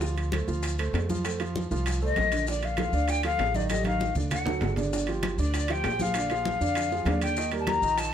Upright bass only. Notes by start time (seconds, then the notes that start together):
Already playing: D2
0.48 D2
0.93 F2
1.71 C2
2.17 A#1
2.92 D2
3.38 A1
4.15 D2
4.61 G1
5.38 D2
5.85 A#1
6.61 F2
7.05 D#2
7.82 A#1